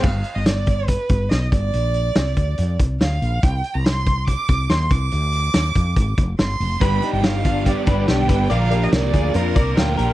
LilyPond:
<<
  \new Staff \with { instrumentName = "Violin" } { \time 4/4 \key g \phrygian \tempo 4 = 142 f''8. ees''16 d''4 b'4 ees''8 d''8~ | d''2~ d''8 r8 f''4 | g''8. bes''16 c'''4 d'''4 c'''8 d'''8~ | d'''2~ d'''8 r8 c'''4 |
b''8. g''16 f''4 d''4 g''4 | f''8. ees''16 d''4 bes'4 g''4 | }
  \new Staff \with { instrumentName = "Clean electric guitar" } { \time 4/4 \key g \phrygian r1 | r1 | r1 | r1 |
<g' b'>8 <ees' g'>4 <d' f'>8 <d' g'>8 <g' b'>8 <d' g'>8 <g' b'>8 | <bes' d''>8 <g' bes'>4 <f' aes'>8 <f' bes'>8 <bes' d''>8 <f' bes'>8 <g' bes'>8 | }
  \new Staff \with { instrumentName = "Overdriven electric guitar" } { \time 4/4 \key g \phrygian r1 | r1 | r1 | r1 |
<g, d g b d' g'>8 <g b d' g'>8 <g, d g b d' g'>8 <g b d' g'>8 <g b d' g'>8 <g b d' g'>8 <g, d g b d' g'>8 <g b d' g'>8 | <bes, d f bes d' bes'>8 <f bes d' bes'>8 <bes, d f bes d' bes'>8 <f bes d' bes'>8 <f bes d' bes'>8 <f bes d' bes'>8 <bes, d f bes d' bes'>8 <f bes d' bes'>8 | }
  \new Staff \with { instrumentName = "Fretless electric bass" } { \clef bass \time 4/4 \key g \phrygian g,,8 r16 g,,4. r16 g,,8 b,,8 g,,8 | bes,,4 c,8 d,8 f,8 c,8 d,8 bes,,8 | c,8 r16 c,4. r16 c,8 ees,8 c,8 | d,4 ees,8 f,8 aes,,8 f,,8 g,,8 f,,8 |
g,,8 r16 g,,4. r16 g,,8 b,,8 g,,8 | bes,,4 c,8 d,8 f,8 c,8 d,8 bes,,8 | }
  \new DrumStaff \with { instrumentName = "Drums" } \drummode { \time 4/4 <cymc bd>8 hh8 <hh sn>8 <hh bd>8 <hh bd>8 <hh bd>8 <hh sn>8 <hh bd>8 | hh8 hh8 <hh sn>8 <hh bd>8 hh8 <hh bd>8 <hh sn>8 hh8 | <hh bd>8 hh8 <hh sn>8 <hh bd>8 <hh bd>8 <hh bd>8 <hh sn>8 <hh bd>8 | hh8 hh8 <hh sn>8 <hh bd>8 <hh bd>8 <hh bd>8 <hh sn>8 hho8 |
<hh bd>8 hh8 <hh sn>8 <hh bd>8 <hh bd>8 <hh bd>8 <hh sn>8 <hh bd>8 | hh8 hh8 <hh sn>8 <hh bd>8 hh8 <hh bd>8 <hh sn>8 hh8 | }
>>